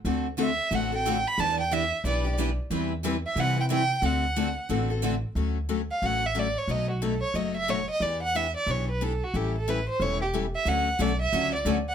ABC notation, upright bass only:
X:1
M:4/4
L:1/8
Q:"Swing" 1/4=181
K:Dmix
V:1 name="Upright bass" clef=bass
D,,4 A,,,4 | E,,4 B,,,4 | E,,4 C,4 | D,,4 A,,,4 |
[K:D] D,,4 A,,,4 | B,,,4 F,,,4 | E,,4 B,,,4 | A,,,4 E,,,4 |
D,,2 B,,,2 C,,2 D,,2 |]